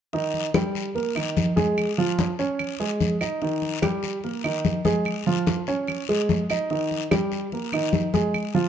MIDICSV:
0, 0, Header, 1, 3, 480
1, 0, Start_track
1, 0, Key_signature, -3, "major"
1, 0, Tempo, 410397
1, 157, Time_signature, 4, 2, 24, 8
1, 10158, End_track
2, 0, Start_track
2, 0, Title_t, "Upright piano"
2, 0, Program_c, 0, 0
2, 153, Note_on_c, 0, 51, 62
2, 158, Note_on_c, 0, 63, 69
2, 548, Note_off_c, 0, 51, 0
2, 551, Note_off_c, 0, 63, 0
2, 637, Note_on_c, 0, 55, 61
2, 639, Note_on_c, 0, 67, 62
2, 1030, Note_off_c, 0, 55, 0
2, 1031, Note_off_c, 0, 67, 0
2, 1111, Note_on_c, 0, 58, 57
2, 1113, Note_on_c, 0, 70, 56
2, 1310, Note_off_c, 0, 58, 0
2, 1311, Note_off_c, 0, 70, 0
2, 1349, Note_on_c, 0, 51, 66
2, 1354, Note_on_c, 0, 63, 66
2, 1745, Note_off_c, 0, 51, 0
2, 1748, Note_off_c, 0, 63, 0
2, 1828, Note_on_c, 0, 56, 67
2, 1830, Note_on_c, 0, 68, 68
2, 2224, Note_off_c, 0, 56, 0
2, 2226, Note_off_c, 0, 68, 0
2, 2317, Note_on_c, 0, 65, 70
2, 2318, Note_on_c, 0, 53, 62
2, 2710, Note_off_c, 0, 53, 0
2, 2710, Note_off_c, 0, 65, 0
2, 2796, Note_on_c, 0, 61, 63
2, 2798, Note_on_c, 0, 73, 64
2, 3189, Note_off_c, 0, 61, 0
2, 3190, Note_off_c, 0, 73, 0
2, 3273, Note_on_c, 0, 56, 66
2, 3276, Note_on_c, 0, 68, 62
2, 3667, Note_off_c, 0, 56, 0
2, 3669, Note_off_c, 0, 68, 0
2, 3754, Note_on_c, 0, 63, 60
2, 3756, Note_on_c, 0, 75, 63
2, 3951, Note_off_c, 0, 63, 0
2, 3952, Note_off_c, 0, 75, 0
2, 4000, Note_on_c, 0, 51, 69
2, 4004, Note_on_c, 0, 63, 64
2, 4392, Note_off_c, 0, 51, 0
2, 4394, Note_off_c, 0, 63, 0
2, 4470, Note_on_c, 0, 55, 66
2, 4477, Note_on_c, 0, 67, 67
2, 4865, Note_off_c, 0, 55, 0
2, 4870, Note_off_c, 0, 67, 0
2, 4960, Note_on_c, 0, 58, 61
2, 4960, Note_on_c, 0, 70, 55
2, 5154, Note_off_c, 0, 58, 0
2, 5155, Note_off_c, 0, 70, 0
2, 5192, Note_on_c, 0, 51, 72
2, 5198, Note_on_c, 0, 63, 69
2, 5587, Note_off_c, 0, 51, 0
2, 5590, Note_off_c, 0, 63, 0
2, 5674, Note_on_c, 0, 56, 66
2, 5675, Note_on_c, 0, 68, 70
2, 6068, Note_off_c, 0, 56, 0
2, 6069, Note_off_c, 0, 68, 0
2, 6160, Note_on_c, 0, 53, 62
2, 6161, Note_on_c, 0, 65, 68
2, 6552, Note_off_c, 0, 53, 0
2, 6552, Note_off_c, 0, 65, 0
2, 6642, Note_on_c, 0, 61, 63
2, 6643, Note_on_c, 0, 73, 62
2, 7033, Note_off_c, 0, 61, 0
2, 7034, Note_off_c, 0, 73, 0
2, 7122, Note_on_c, 0, 68, 66
2, 7123, Note_on_c, 0, 56, 64
2, 7513, Note_off_c, 0, 68, 0
2, 7514, Note_off_c, 0, 56, 0
2, 7604, Note_on_c, 0, 63, 61
2, 7608, Note_on_c, 0, 75, 66
2, 7798, Note_off_c, 0, 63, 0
2, 7800, Note_off_c, 0, 75, 0
2, 7843, Note_on_c, 0, 51, 65
2, 7847, Note_on_c, 0, 63, 68
2, 8234, Note_off_c, 0, 51, 0
2, 8236, Note_off_c, 0, 63, 0
2, 8318, Note_on_c, 0, 55, 60
2, 8324, Note_on_c, 0, 67, 63
2, 8711, Note_off_c, 0, 55, 0
2, 8715, Note_off_c, 0, 67, 0
2, 8808, Note_on_c, 0, 58, 57
2, 8812, Note_on_c, 0, 70, 54
2, 9001, Note_off_c, 0, 58, 0
2, 9002, Note_off_c, 0, 70, 0
2, 9044, Note_on_c, 0, 51, 70
2, 9048, Note_on_c, 0, 63, 69
2, 9435, Note_off_c, 0, 51, 0
2, 9437, Note_off_c, 0, 63, 0
2, 9516, Note_on_c, 0, 56, 66
2, 9523, Note_on_c, 0, 68, 64
2, 9910, Note_off_c, 0, 56, 0
2, 9914, Note_off_c, 0, 68, 0
2, 9994, Note_on_c, 0, 53, 67
2, 9997, Note_on_c, 0, 65, 72
2, 10158, Note_off_c, 0, 53, 0
2, 10158, Note_off_c, 0, 65, 0
2, 10158, End_track
3, 0, Start_track
3, 0, Title_t, "Drums"
3, 154, Note_on_c, 9, 74, 60
3, 157, Note_on_c, 9, 63, 28
3, 271, Note_off_c, 9, 74, 0
3, 274, Note_off_c, 9, 63, 0
3, 397, Note_on_c, 9, 63, 33
3, 514, Note_off_c, 9, 63, 0
3, 633, Note_on_c, 9, 73, 68
3, 636, Note_on_c, 9, 63, 84
3, 637, Note_on_c, 9, 75, 58
3, 750, Note_off_c, 9, 73, 0
3, 753, Note_off_c, 9, 63, 0
3, 754, Note_off_c, 9, 75, 0
3, 880, Note_on_c, 9, 63, 30
3, 881, Note_on_c, 9, 73, 60
3, 997, Note_off_c, 9, 63, 0
3, 998, Note_off_c, 9, 73, 0
3, 1119, Note_on_c, 9, 74, 61
3, 1120, Note_on_c, 9, 63, 31
3, 1236, Note_off_c, 9, 74, 0
3, 1237, Note_off_c, 9, 63, 0
3, 1359, Note_on_c, 9, 75, 56
3, 1361, Note_on_c, 9, 63, 30
3, 1476, Note_off_c, 9, 75, 0
3, 1478, Note_off_c, 9, 63, 0
3, 1597, Note_on_c, 9, 73, 60
3, 1601, Note_on_c, 9, 63, 74
3, 1714, Note_off_c, 9, 73, 0
3, 1718, Note_off_c, 9, 63, 0
3, 1836, Note_on_c, 9, 73, 62
3, 1838, Note_on_c, 9, 63, 78
3, 1953, Note_off_c, 9, 73, 0
3, 1955, Note_off_c, 9, 63, 0
3, 2077, Note_on_c, 9, 63, 28
3, 2078, Note_on_c, 9, 74, 62
3, 2080, Note_on_c, 9, 75, 59
3, 2194, Note_off_c, 9, 63, 0
3, 2195, Note_off_c, 9, 74, 0
3, 2197, Note_off_c, 9, 75, 0
3, 2317, Note_on_c, 9, 63, 33
3, 2434, Note_off_c, 9, 63, 0
3, 2557, Note_on_c, 9, 63, 82
3, 2557, Note_on_c, 9, 73, 64
3, 2674, Note_off_c, 9, 63, 0
3, 2674, Note_off_c, 9, 73, 0
3, 2795, Note_on_c, 9, 73, 59
3, 2797, Note_on_c, 9, 63, 29
3, 2912, Note_off_c, 9, 73, 0
3, 2914, Note_off_c, 9, 63, 0
3, 3033, Note_on_c, 9, 75, 60
3, 3036, Note_on_c, 9, 74, 64
3, 3041, Note_on_c, 9, 63, 29
3, 3150, Note_off_c, 9, 75, 0
3, 3153, Note_off_c, 9, 74, 0
3, 3158, Note_off_c, 9, 63, 0
3, 3281, Note_on_c, 9, 63, 29
3, 3398, Note_off_c, 9, 63, 0
3, 3514, Note_on_c, 9, 73, 65
3, 3516, Note_on_c, 9, 63, 67
3, 3631, Note_off_c, 9, 73, 0
3, 3633, Note_off_c, 9, 63, 0
3, 3753, Note_on_c, 9, 75, 58
3, 3757, Note_on_c, 9, 73, 66
3, 3761, Note_on_c, 9, 63, 31
3, 3870, Note_off_c, 9, 75, 0
3, 3874, Note_off_c, 9, 73, 0
3, 3878, Note_off_c, 9, 63, 0
3, 3996, Note_on_c, 9, 74, 66
3, 3998, Note_on_c, 9, 63, 30
3, 4113, Note_off_c, 9, 74, 0
3, 4115, Note_off_c, 9, 63, 0
3, 4235, Note_on_c, 9, 63, 29
3, 4352, Note_off_c, 9, 63, 0
3, 4473, Note_on_c, 9, 73, 62
3, 4476, Note_on_c, 9, 63, 79
3, 4478, Note_on_c, 9, 75, 57
3, 4590, Note_off_c, 9, 73, 0
3, 4593, Note_off_c, 9, 63, 0
3, 4595, Note_off_c, 9, 75, 0
3, 4710, Note_on_c, 9, 73, 61
3, 4719, Note_on_c, 9, 63, 30
3, 4827, Note_off_c, 9, 73, 0
3, 4836, Note_off_c, 9, 63, 0
3, 4955, Note_on_c, 9, 74, 58
3, 4961, Note_on_c, 9, 63, 31
3, 5072, Note_off_c, 9, 74, 0
3, 5078, Note_off_c, 9, 63, 0
3, 5196, Note_on_c, 9, 75, 57
3, 5201, Note_on_c, 9, 63, 28
3, 5313, Note_off_c, 9, 75, 0
3, 5318, Note_off_c, 9, 63, 0
3, 5435, Note_on_c, 9, 73, 61
3, 5436, Note_on_c, 9, 63, 68
3, 5552, Note_off_c, 9, 73, 0
3, 5553, Note_off_c, 9, 63, 0
3, 5670, Note_on_c, 9, 73, 69
3, 5672, Note_on_c, 9, 63, 72
3, 5786, Note_off_c, 9, 73, 0
3, 5789, Note_off_c, 9, 63, 0
3, 5910, Note_on_c, 9, 74, 58
3, 5915, Note_on_c, 9, 63, 30
3, 5919, Note_on_c, 9, 75, 58
3, 6027, Note_off_c, 9, 74, 0
3, 6032, Note_off_c, 9, 63, 0
3, 6036, Note_off_c, 9, 75, 0
3, 6162, Note_on_c, 9, 63, 30
3, 6279, Note_off_c, 9, 63, 0
3, 6393, Note_on_c, 9, 73, 66
3, 6399, Note_on_c, 9, 63, 76
3, 6510, Note_off_c, 9, 73, 0
3, 6516, Note_off_c, 9, 63, 0
3, 6631, Note_on_c, 9, 73, 59
3, 6643, Note_on_c, 9, 63, 29
3, 6748, Note_off_c, 9, 73, 0
3, 6760, Note_off_c, 9, 63, 0
3, 6870, Note_on_c, 9, 74, 63
3, 6880, Note_on_c, 9, 63, 32
3, 6881, Note_on_c, 9, 75, 58
3, 6987, Note_off_c, 9, 74, 0
3, 6997, Note_off_c, 9, 63, 0
3, 6997, Note_off_c, 9, 75, 0
3, 7119, Note_on_c, 9, 63, 30
3, 7236, Note_off_c, 9, 63, 0
3, 7359, Note_on_c, 9, 73, 58
3, 7360, Note_on_c, 9, 63, 76
3, 7476, Note_off_c, 9, 73, 0
3, 7477, Note_off_c, 9, 63, 0
3, 7598, Note_on_c, 9, 63, 31
3, 7598, Note_on_c, 9, 73, 69
3, 7602, Note_on_c, 9, 75, 56
3, 7715, Note_off_c, 9, 63, 0
3, 7715, Note_off_c, 9, 73, 0
3, 7719, Note_off_c, 9, 75, 0
3, 7838, Note_on_c, 9, 74, 57
3, 7845, Note_on_c, 9, 63, 30
3, 7955, Note_off_c, 9, 74, 0
3, 7961, Note_off_c, 9, 63, 0
3, 8085, Note_on_c, 9, 63, 33
3, 8202, Note_off_c, 9, 63, 0
3, 8320, Note_on_c, 9, 75, 58
3, 8321, Note_on_c, 9, 73, 66
3, 8323, Note_on_c, 9, 63, 79
3, 8437, Note_off_c, 9, 75, 0
3, 8438, Note_off_c, 9, 73, 0
3, 8440, Note_off_c, 9, 63, 0
3, 8558, Note_on_c, 9, 73, 57
3, 8561, Note_on_c, 9, 63, 30
3, 8675, Note_off_c, 9, 73, 0
3, 8678, Note_off_c, 9, 63, 0
3, 8798, Note_on_c, 9, 74, 67
3, 8799, Note_on_c, 9, 63, 31
3, 8915, Note_off_c, 9, 74, 0
3, 8916, Note_off_c, 9, 63, 0
3, 9034, Note_on_c, 9, 63, 33
3, 9040, Note_on_c, 9, 75, 61
3, 9151, Note_off_c, 9, 63, 0
3, 9157, Note_off_c, 9, 75, 0
3, 9273, Note_on_c, 9, 63, 70
3, 9274, Note_on_c, 9, 73, 56
3, 9390, Note_off_c, 9, 63, 0
3, 9390, Note_off_c, 9, 73, 0
3, 9518, Note_on_c, 9, 63, 77
3, 9519, Note_on_c, 9, 73, 64
3, 9635, Note_off_c, 9, 63, 0
3, 9636, Note_off_c, 9, 73, 0
3, 9756, Note_on_c, 9, 74, 64
3, 9759, Note_on_c, 9, 63, 26
3, 9759, Note_on_c, 9, 75, 59
3, 9873, Note_off_c, 9, 74, 0
3, 9876, Note_off_c, 9, 63, 0
3, 9876, Note_off_c, 9, 75, 0
3, 10002, Note_on_c, 9, 63, 30
3, 10119, Note_off_c, 9, 63, 0
3, 10158, End_track
0, 0, End_of_file